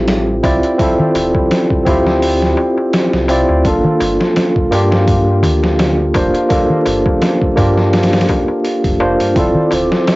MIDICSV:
0, 0, Header, 1, 7, 480
1, 0, Start_track
1, 0, Tempo, 714286
1, 530, Time_signature, 4, 2, 24, 8
1, 6825, End_track
2, 0, Start_track
2, 0, Title_t, "Analog synth pad"
2, 0, Program_c, 0, 89
2, 6286, Note_on_c, 0, 72, 81
2, 6286, Note_on_c, 0, 86, 87
2, 6825, Note_off_c, 0, 72, 0
2, 6825, Note_off_c, 0, 86, 0
2, 6825, End_track
3, 0, Start_track
3, 0, Title_t, "Soft synth lead"
3, 0, Program_c, 1, 80
3, 6303, Note_on_c, 1, 74, 101
3, 6520, Note_off_c, 1, 74, 0
3, 6543, Note_on_c, 1, 72, 101
3, 6783, Note_on_c, 1, 76, 108
3, 6793, Note_off_c, 1, 72, 0
3, 6825, Note_off_c, 1, 76, 0
3, 6825, End_track
4, 0, Start_track
4, 0, Title_t, "Tine electric piano"
4, 0, Program_c, 2, 4
4, 0, Control_c, 2, 64, 127
4, 0, Note_on_c, 2, 60, 79
4, 0, Note_on_c, 2, 64, 72
4, 0, Note_on_c, 2, 65, 74
4, 0, Note_on_c, 2, 67, 85
4, 261, Note_off_c, 2, 60, 0
4, 264, Note_off_c, 2, 64, 0
4, 269, Note_off_c, 2, 65, 0
4, 273, Note_off_c, 2, 67, 0
4, 289, Note_on_c, 2, 60, 70
4, 293, Note_on_c, 2, 64, 69
4, 296, Note_on_c, 2, 65, 66
4, 299, Note_on_c, 2, 74, 81
4, 504, Note_off_c, 2, 60, 0
4, 506, Note_off_c, 2, 64, 0
4, 507, Note_off_c, 2, 65, 0
4, 509, Note_off_c, 2, 74, 0
4, 523, Note_on_c, 2, 60, 68
4, 529, Note_on_c, 2, 64, 67
4, 539, Note_on_c, 2, 65, 61
4, 545, Note_on_c, 2, 69, 81
4, 1221, Note_off_c, 2, 60, 0
4, 1224, Note_off_c, 2, 64, 0
4, 1229, Note_off_c, 2, 65, 0
4, 1232, Note_off_c, 2, 69, 0
4, 1244, Note_on_c, 2, 60, 78
4, 1252, Note_on_c, 2, 64, 66
4, 1260, Note_on_c, 2, 65, 74
4, 1267, Note_on_c, 2, 67, 83
4, 2181, Note_off_c, 2, 60, 0
4, 2185, Note_off_c, 2, 64, 0
4, 2189, Note_off_c, 2, 65, 0
4, 2193, Note_off_c, 2, 67, 0
4, 2211, Note_on_c, 2, 60, 75
4, 2216, Note_on_c, 2, 64, 69
4, 2220, Note_on_c, 2, 65, 69
4, 2223, Note_on_c, 2, 74, 82
4, 2425, Note_off_c, 2, 60, 0
4, 2428, Note_off_c, 2, 64, 0
4, 2429, Note_off_c, 2, 65, 0
4, 2431, Note_off_c, 2, 74, 0
4, 2447, Note_on_c, 2, 58, 69
4, 2454, Note_on_c, 2, 62, 63
4, 2459, Control_c, 2, 64, 0
4, 2463, Note_on_c, 2, 65, 66
4, 2470, Note_on_c, 2, 69, 74
4, 2566, Control_c, 2, 64, 127
4, 3143, Note_off_c, 2, 58, 0
4, 3147, Note_off_c, 2, 62, 0
4, 3151, Note_off_c, 2, 65, 0
4, 3154, Note_off_c, 2, 69, 0
4, 3166, Note_on_c, 2, 58, 81
4, 3172, Note_on_c, 2, 62, 71
4, 3181, Note_on_c, 2, 65, 78
4, 3188, Note_on_c, 2, 67, 90
4, 4102, Note_off_c, 2, 58, 0
4, 4105, Note_off_c, 2, 62, 0
4, 4110, Note_off_c, 2, 65, 0
4, 4113, Note_off_c, 2, 67, 0
4, 4130, Note_on_c, 2, 58, 68
4, 4135, Note_on_c, 2, 62, 66
4, 4136, Note_on_c, 2, 65, 65
4, 4141, Note_on_c, 2, 72, 77
4, 4344, Note_off_c, 2, 58, 0
4, 4347, Note_off_c, 2, 62, 0
4, 4347, Note_off_c, 2, 65, 0
4, 4350, Note_off_c, 2, 72, 0
4, 4362, Note_on_c, 2, 58, 68
4, 4368, Note_on_c, 2, 62, 67
4, 4376, Note_on_c, 2, 65, 63
4, 4383, Note_on_c, 2, 69, 78
4, 5060, Note_off_c, 2, 58, 0
4, 5064, Note_off_c, 2, 62, 0
4, 5067, Note_off_c, 2, 65, 0
4, 5071, Note_off_c, 2, 69, 0
4, 5079, Note_on_c, 2, 58, 78
4, 5085, Note_on_c, 2, 62, 72
4, 5093, Note_on_c, 2, 65, 73
4, 5101, Note_on_c, 2, 67, 86
4, 6019, Note_off_c, 2, 58, 0
4, 6022, Note_off_c, 2, 62, 0
4, 6026, Note_off_c, 2, 65, 0
4, 6030, Note_off_c, 2, 67, 0
4, 6046, Note_on_c, 2, 58, 69
4, 6049, Note_on_c, 2, 62, 65
4, 6054, Note_on_c, 2, 65, 66
4, 6057, Note_on_c, 2, 72, 79
4, 6263, Note_off_c, 2, 58, 0
4, 6264, Note_off_c, 2, 62, 0
4, 6266, Note_off_c, 2, 65, 0
4, 6268, Note_off_c, 2, 72, 0
4, 6283, Note_on_c, 2, 60, 71
4, 6291, Note_on_c, 2, 64, 63
4, 6298, Control_c, 2, 64, 0
4, 6299, Note_on_c, 2, 65, 60
4, 6307, Note_on_c, 2, 69, 74
4, 6399, Control_c, 2, 64, 127
4, 6825, Note_off_c, 2, 60, 0
4, 6825, Note_off_c, 2, 64, 0
4, 6825, Note_off_c, 2, 65, 0
4, 6825, Note_off_c, 2, 69, 0
4, 6825, End_track
5, 0, Start_track
5, 0, Title_t, "Detuned saw bass"
5, 0, Program_c, 3, 39
5, 0, Note_on_c, 3, 33, 95
5, 272, Note_off_c, 3, 33, 0
5, 295, Note_on_c, 3, 36, 68
5, 409, Note_off_c, 3, 36, 0
5, 773, Note_on_c, 3, 26, 91
5, 888, Note_off_c, 3, 26, 0
5, 1256, Note_on_c, 3, 38, 103
5, 1713, Note_off_c, 3, 38, 0
5, 2107, Note_on_c, 3, 36, 76
5, 2313, Note_off_c, 3, 36, 0
5, 2349, Note_on_c, 3, 38, 95
5, 2440, Note_off_c, 3, 38, 0
5, 2455, Note_on_c, 3, 31, 92
5, 2569, Note_off_c, 3, 31, 0
5, 2695, Note_on_c, 3, 31, 90
5, 2809, Note_off_c, 3, 31, 0
5, 3173, Note_on_c, 3, 43, 103
5, 3655, Note_on_c, 3, 38, 93
5, 3665, Note_off_c, 3, 43, 0
5, 4112, Note_off_c, 3, 38, 0
5, 4134, Note_on_c, 3, 29, 75
5, 4249, Note_off_c, 3, 29, 0
5, 4615, Note_on_c, 3, 31, 98
5, 4729, Note_off_c, 3, 31, 0
5, 5093, Note_on_c, 3, 43, 102
5, 5551, Note_off_c, 3, 43, 0
5, 5947, Note_on_c, 3, 29, 76
5, 6153, Note_off_c, 3, 29, 0
5, 6189, Note_on_c, 3, 43, 100
5, 6280, Note_off_c, 3, 43, 0
5, 6292, Note_on_c, 3, 26, 92
5, 6408, Note_off_c, 3, 26, 0
5, 6534, Note_on_c, 3, 26, 96
5, 6649, Note_off_c, 3, 26, 0
5, 6825, End_track
6, 0, Start_track
6, 0, Title_t, "Darbuka"
6, 53, Note_on_c, 9, 63, 36
6, 120, Note_off_c, 9, 63, 0
6, 293, Note_on_c, 9, 63, 87
6, 360, Note_off_c, 9, 63, 0
6, 429, Note_on_c, 9, 63, 43
6, 497, Note_off_c, 9, 63, 0
6, 538, Note_on_c, 9, 63, 38
6, 605, Note_off_c, 9, 63, 0
6, 669, Note_on_c, 9, 64, 87
6, 736, Note_off_c, 9, 64, 0
6, 775, Note_on_c, 9, 63, 80
6, 842, Note_off_c, 9, 63, 0
6, 905, Note_on_c, 9, 63, 51
6, 972, Note_off_c, 9, 63, 0
6, 1018, Note_on_c, 9, 63, 33
6, 1085, Note_off_c, 9, 63, 0
6, 1252, Note_on_c, 9, 63, 82
6, 1319, Note_off_c, 9, 63, 0
6, 1388, Note_on_c, 9, 63, 54
6, 1456, Note_off_c, 9, 63, 0
6, 1496, Note_on_c, 9, 63, 37
6, 1563, Note_off_c, 9, 63, 0
6, 1727, Note_on_c, 9, 63, 78
6, 1795, Note_off_c, 9, 63, 0
6, 1865, Note_on_c, 9, 63, 49
6, 1932, Note_off_c, 9, 63, 0
6, 1971, Note_on_c, 9, 63, 36
6, 2038, Note_off_c, 9, 63, 0
6, 2206, Note_on_c, 9, 63, 81
6, 2273, Note_off_c, 9, 63, 0
6, 2345, Note_on_c, 9, 63, 45
6, 2412, Note_off_c, 9, 63, 0
6, 2450, Note_on_c, 9, 63, 38
6, 2517, Note_off_c, 9, 63, 0
6, 2584, Note_on_c, 9, 64, 83
6, 2651, Note_off_c, 9, 64, 0
6, 2690, Note_on_c, 9, 63, 92
6, 2758, Note_off_c, 9, 63, 0
6, 2824, Note_on_c, 9, 63, 48
6, 2892, Note_off_c, 9, 63, 0
6, 2935, Note_on_c, 9, 63, 36
6, 3002, Note_off_c, 9, 63, 0
6, 3173, Note_on_c, 9, 63, 86
6, 3240, Note_off_c, 9, 63, 0
6, 3304, Note_on_c, 9, 63, 45
6, 3371, Note_off_c, 9, 63, 0
6, 3410, Note_on_c, 9, 63, 38
6, 3477, Note_off_c, 9, 63, 0
6, 3647, Note_on_c, 9, 64, 79
6, 3648, Note_on_c, 9, 63, 84
6, 3714, Note_off_c, 9, 64, 0
6, 3715, Note_off_c, 9, 63, 0
6, 3783, Note_on_c, 9, 63, 41
6, 3850, Note_off_c, 9, 63, 0
6, 3889, Note_on_c, 9, 63, 36
6, 3956, Note_off_c, 9, 63, 0
6, 4127, Note_on_c, 9, 63, 97
6, 4195, Note_off_c, 9, 63, 0
6, 4262, Note_on_c, 9, 63, 44
6, 4329, Note_off_c, 9, 63, 0
6, 4368, Note_on_c, 9, 63, 37
6, 4435, Note_off_c, 9, 63, 0
6, 4503, Note_on_c, 9, 64, 75
6, 4570, Note_off_c, 9, 64, 0
6, 4608, Note_on_c, 9, 63, 77
6, 4675, Note_off_c, 9, 63, 0
6, 4745, Note_on_c, 9, 63, 52
6, 4812, Note_off_c, 9, 63, 0
6, 4853, Note_on_c, 9, 63, 37
6, 4920, Note_off_c, 9, 63, 0
6, 5087, Note_on_c, 9, 63, 79
6, 5154, Note_off_c, 9, 63, 0
6, 5224, Note_on_c, 9, 63, 53
6, 5291, Note_off_c, 9, 63, 0
6, 5328, Note_on_c, 9, 63, 39
6, 5396, Note_off_c, 9, 63, 0
6, 5573, Note_on_c, 9, 63, 78
6, 5640, Note_off_c, 9, 63, 0
6, 5700, Note_on_c, 9, 63, 46
6, 5767, Note_off_c, 9, 63, 0
6, 5809, Note_on_c, 9, 63, 32
6, 5876, Note_off_c, 9, 63, 0
6, 6049, Note_on_c, 9, 63, 97
6, 6117, Note_off_c, 9, 63, 0
6, 6182, Note_on_c, 9, 63, 44
6, 6249, Note_off_c, 9, 63, 0
6, 6286, Note_on_c, 9, 63, 38
6, 6353, Note_off_c, 9, 63, 0
6, 6416, Note_on_c, 9, 64, 76
6, 6483, Note_off_c, 9, 64, 0
6, 6523, Note_on_c, 9, 63, 80
6, 6590, Note_off_c, 9, 63, 0
6, 6665, Note_on_c, 9, 63, 44
6, 6732, Note_off_c, 9, 63, 0
6, 6769, Note_on_c, 9, 63, 40
6, 6825, Note_off_c, 9, 63, 0
6, 6825, End_track
7, 0, Start_track
7, 0, Title_t, "Drums"
7, 51, Note_on_c, 9, 46, 77
7, 53, Note_on_c, 9, 38, 108
7, 118, Note_off_c, 9, 46, 0
7, 121, Note_off_c, 9, 38, 0
7, 292, Note_on_c, 9, 36, 89
7, 293, Note_on_c, 9, 46, 65
7, 359, Note_off_c, 9, 36, 0
7, 360, Note_off_c, 9, 46, 0
7, 424, Note_on_c, 9, 42, 39
7, 491, Note_off_c, 9, 42, 0
7, 532, Note_on_c, 9, 36, 108
7, 533, Note_on_c, 9, 46, 86
7, 599, Note_off_c, 9, 36, 0
7, 600, Note_off_c, 9, 46, 0
7, 773, Note_on_c, 9, 46, 66
7, 840, Note_off_c, 9, 46, 0
7, 905, Note_on_c, 9, 36, 87
7, 972, Note_off_c, 9, 36, 0
7, 1014, Note_on_c, 9, 46, 84
7, 1017, Note_on_c, 9, 38, 108
7, 1082, Note_off_c, 9, 46, 0
7, 1084, Note_off_c, 9, 38, 0
7, 1145, Note_on_c, 9, 36, 91
7, 1212, Note_off_c, 9, 36, 0
7, 1252, Note_on_c, 9, 36, 87
7, 1253, Note_on_c, 9, 46, 59
7, 1319, Note_off_c, 9, 36, 0
7, 1320, Note_off_c, 9, 46, 0
7, 1388, Note_on_c, 9, 38, 37
7, 1455, Note_off_c, 9, 38, 0
7, 1493, Note_on_c, 9, 46, 77
7, 1561, Note_off_c, 9, 46, 0
7, 1628, Note_on_c, 9, 38, 35
7, 1695, Note_off_c, 9, 38, 0
7, 1971, Note_on_c, 9, 46, 79
7, 1974, Note_on_c, 9, 38, 104
7, 2039, Note_off_c, 9, 46, 0
7, 2041, Note_off_c, 9, 38, 0
7, 2107, Note_on_c, 9, 38, 44
7, 2174, Note_off_c, 9, 38, 0
7, 2211, Note_on_c, 9, 46, 65
7, 2278, Note_off_c, 9, 46, 0
7, 2452, Note_on_c, 9, 36, 99
7, 2452, Note_on_c, 9, 46, 82
7, 2519, Note_off_c, 9, 36, 0
7, 2519, Note_off_c, 9, 46, 0
7, 2693, Note_on_c, 9, 46, 64
7, 2760, Note_off_c, 9, 46, 0
7, 2827, Note_on_c, 9, 38, 49
7, 2894, Note_off_c, 9, 38, 0
7, 2931, Note_on_c, 9, 46, 80
7, 2933, Note_on_c, 9, 38, 109
7, 2998, Note_off_c, 9, 46, 0
7, 3000, Note_off_c, 9, 38, 0
7, 3065, Note_on_c, 9, 36, 84
7, 3132, Note_off_c, 9, 36, 0
7, 3172, Note_on_c, 9, 46, 65
7, 3240, Note_off_c, 9, 46, 0
7, 3308, Note_on_c, 9, 38, 52
7, 3375, Note_off_c, 9, 38, 0
7, 3412, Note_on_c, 9, 36, 103
7, 3412, Note_on_c, 9, 46, 86
7, 3479, Note_off_c, 9, 46, 0
7, 3480, Note_off_c, 9, 36, 0
7, 3653, Note_on_c, 9, 46, 64
7, 3721, Note_off_c, 9, 46, 0
7, 3788, Note_on_c, 9, 38, 47
7, 3855, Note_off_c, 9, 38, 0
7, 3891, Note_on_c, 9, 46, 85
7, 3894, Note_on_c, 9, 38, 101
7, 3958, Note_off_c, 9, 46, 0
7, 3961, Note_off_c, 9, 38, 0
7, 4129, Note_on_c, 9, 46, 64
7, 4131, Note_on_c, 9, 36, 92
7, 4197, Note_off_c, 9, 46, 0
7, 4198, Note_off_c, 9, 36, 0
7, 4264, Note_on_c, 9, 42, 43
7, 4332, Note_off_c, 9, 42, 0
7, 4369, Note_on_c, 9, 46, 84
7, 4371, Note_on_c, 9, 36, 104
7, 4436, Note_off_c, 9, 46, 0
7, 4438, Note_off_c, 9, 36, 0
7, 4610, Note_on_c, 9, 46, 67
7, 4677, Note_off_c, 9, 46, 0
7, 4743, Note_on_c, 9, 36, 90
7, 4810, Note_off_c, 9, 36, 0
7, 4850, Note_on_c, 9, 46, 85
7, 4853, Note_on_c, 9, 38, 116
7, 4917, Note_off_c, 9, 46, 0
7, 4920, Note_off_c, 9, 38, 0
7, 4983, Note_on_c, 9, 36, 87
7, 5050, Note_off_c, 9, 36, 0
7, 5090, Note_on_c, 9, 46, 67
7, 5091, Note_on_c, 9, 36, 84
7, 5157, Note_off_c, 9, 46, 0
7, 5158, Note_off_c, 9, 36, 0
7, 5225, Note_on_c, 9, 38, 37
7, 5292, Note_off_c, 9, 38, 0
7, 5329, Note_on_c, 9, 46, 61
7, 5332, Note_on_c, 9, 38, 79
7, 5396, Note_off_c, 9, 46, 0
7, 5396, Note_on_c, 9, 46, 64
7, 5399, Note_off_c, 9, 38, 0
7, 5399, Note_on_c, 9, 38, 79
7, 5462, Note_off_c, 9, 46, 0
7, 5462, Note_on_c, 9, 46, 64
7, 5465, Note_off_c, 9, 38, 0
7, 5465, Note_on_c, 9, 38, 77
7, 5515, Note_off_c, 9, 46, 0
7, 5515, Note_on_c, 9, 46, 61
7, 5518, Note_off_c, 9, 38, 0
7, 5518, Note_on_c, 9, 38, 81
7, 5569, Note_off_c, 9, 46, 0
7, 5569, Note_on_c, 9, 46, 72
7, 5570, Note_on_c, 9, 36, 91
7, 5585, Note_off_c, 9, 38, 0
7, 5636, Note_off_c, 9, 46, 0
7, 5637, Note_off_c, 9, 36, 0
7, 5811, Note_on_c, 9, 46, 55
7, 5878, Note_off_c, 9, 46, 0
7, 5943, Note_on_c, 9, 36, 85
7, 5943, Note_on_c, 9, 46, 63
7, 6010, Note_off_c, 9, 36, 0
7, 6010, Note_off_c, 9, 46, 0
7, 6183, Note_on_c, 9, 46, 57
7, 6251, Note_off_c, 9, 46, 0
7, 6289, Note_on_c, 9, 46, 76
7, 6290, Note_on_c, 9, 36, 106
7, 6356, Note_off_c, 9, 46, 0
7, 6357, Note_off_c, 9, 36, 0
7, 6529, Note_on_c, 9, 46, 66
7, 6596, Note_off_c, 9, 46, 0
7, 6665, Note_on_c, 9, 38, 51
7, 6732, Note_off_c, 9, 38, 0
7, 6770, Note_on_c, 9, 46, 87
7, 6772, Note_on_c, 9, 38, 113
7, 6825, Note_off_c, 9, 38, 0
7, 6825, Note_off_c, 9, 46, 0
7, 6825, End_track
0, 0, End_of_file